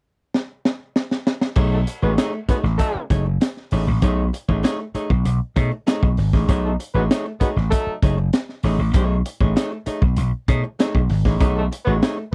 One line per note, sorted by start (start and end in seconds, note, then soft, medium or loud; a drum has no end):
0.34 snare medium
0.65 snare medium
0.96 snare medium
1.11 snare medium
1.27 snare loud
1.41 snare medium
1.56 1.83 B1 loud
1.56 1.77 A3 medium
1.56 1.78 D#4 medium
1.56 1.78 G#4 medium
1.56 1.78 C#5 medium
1.56 kick loud
1.56 crash medium
1.72 1.81 F#3 medium
1.72 1.81 A3 medium
1.72 1.81 D#4 medium
1.72 1.81 A4 medium
1.87 muted hollow-body jazz guitar stroke soft
1.87 closed hi-hat loud
2.02 2.16 A1 medium
2.02 2.12 G#3 medium
2.02 2.17 A3 soft
2.02 2.12 B3 medium
2.02 2.17 D#4 soft
2.02 2.12 F#4 medium
2.02 2.17 G#4 medium
2.02 2.12 B4 medium
2.02 2.18 C#5 medium
2.18 2.39 A3 loud
2.18 2.32 D#4 loud
2.18 2.32 G#4 loud
2.18 2.32 C#5 loud
2.18 snare loud
2.18 closed hi-hat loud
2.33 muted hollow-body jazz guitar stroke soft
2.48 2.58 G#3 medium
2.48 2.65 A3 medium
2.48 2.58 B3 medium
2.48 2.64 D#4 medium
2.48 2.58 F#4 medium
2.48 2.63 G#4 medium
2.48 2.58 B4 medium
2.48 2.63 C#5 medium
2.48 muted slap bass stroke soft
2.48 kick loud
2.48 snare soft
2.48 closed hi-hat medium
2.63 2.77 A1 medium
2.63 muted hollow-body jazz guitar stroke soft
2.63 snare soft
2.78 3.03 F#3 loud
2.78 3.03 A3 loud
2.78 3.04 D#4 loud
2.78 3.03 A4 loud
2.78 muted hollow-body jazz guitar stroke soft
2.78 kick medium
2.78 closed hi-hat loud
2.95 muted slap bass stroke soft
3.10 3.37 F#1 medium
3.10 3.27 A3 medium
3.10 3.25 D#4 medium
3.10 3.25 G#4 medium
3.10 3.25 C#5 medium
3.10 kick medium
3.10 closed hi-hat medium
3.26 muted hollow-body jazz guitar stroke soft
3.41 muted hollow-body jazz guitar stroke soft
3.41 snare loud
3.41 closed hi-hat medium
3.57 snare soft
3.71 3.85 A1 medium
3.71 3.88 A3 medium
3.71 3.87 D#4 medium
3.71 3.87 G#4 medium
3.71 3.86 C#5 medium
3.71 snare soft
3.71 open hi-hat medium
3.87 4.01 A1 medium
3.87 muted hollow-body jazz guitar stroke soft
4.02 4.29 B1 loud
4.02 4.24 A3 medium
4.02 4.24 D#4 medium
4.02 4.24 G#4 medium
4.02 4.24 C#5 loud
4.02 kick loud
4.02 closed hi-hat medium
4.33 muted hollow-body jazz guitar stroke soft
4.33 closed hi-hat medium
4.48 4.62 A1 medium
4.48 4.62 A3 medium
4.48 4.62 D#4 medium
4.48 4.63 G#4 medium
4.48 4.63 C#5 medium
4.48 kick medium
4.63 4.84 A3 medium
4.63 4.79 D#4 loud
4.63 4.79 G#4 loud
4.63 4.78 C#5 loud
4.63 snare loud
4.63 closed hi-hat loud
4.79 muted hollow-body jazz guitar stroke medium
4.95 5.11 A3 medium
4.95 5.10 D#4 medium
4.95 5.09 G#4 medium
4.95 5.09 C#5 medium
4.95 muted slap bass stroke soft
4.95 closed hi-hat medium
5.10 5.24 B1 medium
5.10 muted hollow-body jazz guitar stroke soft
5.10 kick medium
5.25 5.39 B1 medium
5.25 muted hollow-body jazz guitar stroke soft
5.25 closed hi-hat medium
5.56 5.70 B2 loud
5.56 5.72 A3 medium
5.56 5.71 D#4 medium
5.56 5.70 G#4 medium
5.56 5.70 C#5 medium
5.56 kick medium
5.56 closed hi-hat medium
5.71 muted hollow-body jazz guitar stroke soft
5.87 6.08 A3 medium
5.87 6.08 D#4 medium
5.87 6.08 G#4 medium
5.87 6.08 C#5 medium
5.87 snare loud
5.87 closed hi-hat medium
6.02 6.16 B1 medium
6.02 kick medium
6.17 6.31 G#1 loud
6.17 muted hollow-body jazz guitar stroke soft
6.17 snare soft
6.17 open hi-hat medium
6.33 6.46 A1 medium
6.33 6.47 A3 soft
6.33 6.48 D#4 medium
6.33 6.48 G#4 medium
6.33 6.48 C#5 medium
6.33 kick medium
6.33 snare soft
6.48 6.75 B1 loud
6.48 6.69 A3 medium
6.48 6.70 D#4 medium
6.48 6.70 G#4 medium
6.48 6.70 C#5 medium
6.48 kick loud
6.48 closed hi-hat medium
6.64 6.73 F#3 medium
6.64 6.73 A3 medium
6.64 6.74 D#4 medium
6.64 6.73 A4 medium
6.79 muted hollow-body jazz guitar stroke soft
6.79 closed hi-hat medium
6.94 7.08 A1 medium
6.94 7.03 G#3 medium
6.94 7.10 A3 medium
6.94 7.04 B3 medium
6.94 7.10 D#4 medium
6.94 7.04 F#4 medium
6.94 7.10 G#4 soft
6.94 7.04 B4 medium
6.94 7.11 C#5 medium
7.11 7.31 A3 medium
7.11 7.25 D#4 medium
7.11 7.25 G#4 loud
7.11 7.24 C#5 loud
7.11 snare loud
7.11 closed hi-hat loud
7.26 muted hollow-body jazz guitar stroke medium
7.40 7.50 G#3 medium
7.40 7.57 A3 medium
7.40 7.50 B3 medium
7.40 7.56 D#4 medium
7.40 7.49 F#4 medium
7.40 7.56 G#4 medium
7.40 7.50 B4 medium
7.40 7.56 C#5 medium
7.40 muted slap bass stroke soft
7.40 kick medium
7.40 snare soft
7.40 closed hi-hat medium
7.56 7.70 A1 medium
7.56 muted hollow-body jazz guitar stroke soft
7.56 snare soft
7.71 7.96 F#3 loud
7.71 7.96 A3 loud
7.71 7.96 D#4 loud
7.71 7.96 A4 loud
7.71 muted hollow-body jazz guitar stroke soft
7.71 kick loud
7.71 closed hi-hat medium
7.87 muted slap bass stroke soft
8.02 8.29 F#1 medium
8.02 8.19 A3 medium
8.02 8.17 D#4 medium
8.02 8.17 G#4 medium
8.02 8.17 C#5 medium
8.02 kick medium
8.02 closed hi-hat medium
8.18 muted hollow-body jazz guitar stroke soft
8.33 muted hollow-body jazz guitar stroke soft
8.33 snare loud
8.33 closed hi-hat medium
8.49 snare soft
8.63 8.77 A1 medium
8.63 8.80 A3 medium
8.63 8.80 D#4 medium
8.63 8.79 G#4 medium
8.63 8.79 C#5 medium
8.63 snare soft
8.63 open hi-hat medium
8.79 8.92 A1 medium
8.79 muted hollow-body jazz guitar stroke soft
8.94 9.21 B1 loud
8.94 9.16 A3 medium
8.94 9.16 D#4 medium
8.94 9.16 G#4 medium
8.94 9.16 C#5 medium
8.94 kick loud
8.94 closed hi-hat medium
9.26 muted hollow-body jazz guitar stroke medium
9.26 closed hi-hat medium
9.40 9.54 A1 medium
9.40 9.55 A3 medium
9.40 9.55 D#4 medium
9.40 9.56 G#4 medium
9.40 9.56 C#5 medium
9.40 kick medium
9.56 9.77 A3 medium
9.56 9.71 D#4 medium
9.56 9.71 G#4 loud
9.56 9.71 C#5 loud
9.56 snare loud
9.56 closed hi-hat loud
9.72 muted hollow-body jazz guitar stroke medium
9.86 10.03 A3 medium
9.86 10.02 D#4 medium
9.86 10.01 G#4 medium
9.86 10.01 C#5 medium
9.86 muted slap bass stroke soft
9.86 closed hi-hat medium
10.02 10.15 B1 medium
10.02 muted hollow-body jazz guitar stroke soft
10.02 kick medium
10.16 10.31 B1 loud
10.16 muted hollow-body jazz guitar stroke soft
10.16 closed hi-hat medium
10.48 10.62 B2 loud
10.48 10.65 A3 medium
10.48 10.64 D#4 medium
10.48 10.63 G#4 medium
10.48 10.63 C#5 medium
10.48 kick loud
10.48 closed hi-hat medium
10.64 muted hollow-body jazz guitar stroke soft
10.79 11.00 A3 medium
10.79 11.00 D#4 medium
10.79 11.00 G#4 medium
10.79 11.01 C#5 medium
10.79 snare loud
10.79 closed hi-hat medium
10.95 11.08 B1 medium
10.95 kick medium
11.09 11.23 G#1 loud
11.09 muted hollow-body jazz guitar stroke soft
11.09 snare soft
11.09 open hi-hat medium
11.25 11.39 A1 medium
11.25 11.39 A3 soft
11.25 11.39 D#4 medium
11.25 11.40 G#4 medium
11.25 11.40 C#5 medium
11.25 kick medium
11.25 snare soft
11.40 11.67 B1 loud
11.40 11.61 A3 medium
11.40 11.62 D#4 medium
11.40 11.62 G#4 medium
11.40 11.62 C#5 medium
11.40 kick loud
11.40 closed hi-hat medium
11.56 11.65 F#3 medium
11.56 11.66 A3 medium
11.56 11.66 D#4 medium
11.56 11.66 A4 medium
11.71 muted hollow-body jazz guitar stroke soft
11.71 closed hi-hat loud
11.85 12.00 A1 medium
11.85 11.95 G#3 medium
11.85 12.01 A3 soft
11.85 11.95 B3 medium
11.85 12.02 D#4 medium
11.85 11.95 F#4 medium
11.85 12.02 G#4 medium
11.85 11.95 B4 medium
11.85 12.02 C#5 medium
12.02 12.23 A3 medium
12.02 12.17 D#4 medium
12.02 12.17 G#4 medium
12.02 12.16 C#5 loud
12.02 snare loud
12.02 closed hi-hat medium
12.17 muted hollow-body jazz guitar stroke medium